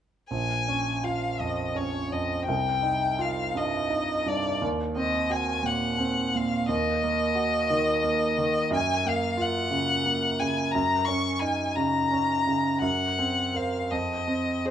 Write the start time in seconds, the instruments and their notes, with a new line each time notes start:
0.31 grand piano A#1, violin G#5
0.68 grand piano C#4
1.04 grand piano F4, violin F5
1.40 grand piano F2, violin D#5
1.75 grand piano C#4, violin C#5
2.12 grand piano F2, violin D#5
2.46 grand piano C2, violin G5
2.83 grand piano D#4
3.19 grand piano F4, violin F5
3.55 grand piano G2, violin D#5
3.90 grand piano D#4
4.26 grand piano G2, violin D5
4.62 grand piano D#2
4.96 grand piano C4, violin D#5
5.30 grand piano F#4, violin G#5
5.63 grand piano A#2, violin F#5
5.98 grand piano C4
6.35 grand piano A#2, violin F5
6.69 grand piano D#2, violin D#5
7.03 grand piano A#3
7.35 grand piano F#4
7.70 grand piano D#3
8.03 grand piano A#3
8.38 grand piano D#3
8.71 grand piano F#2, violin G#5
9.05 grand piano A#3, violin F5
9.37 grand piano F4
9.42 violin F#5
9.71 grand piano C#3
10.06 grand piano A#3
10.40 grand piano C#3, violin G#5
10.71 grand piano F#2, violin A#5
11.05 grand piano C#4, violin C#6
11.40 grand piano D#4, violin G#5
11.75 grand piano C#3, violin A#5
12.12 grand piano C#4
12.47 grand piano C#3
12.82 grand piano F#2, violin F#5
13.19 grand piano C4
13.54 grand piano A#4 C5, violin F5
13.91 grand piano F2, violin D#5
14.27 grand piano C4
14.65 grand piano G#4 C5, violin C5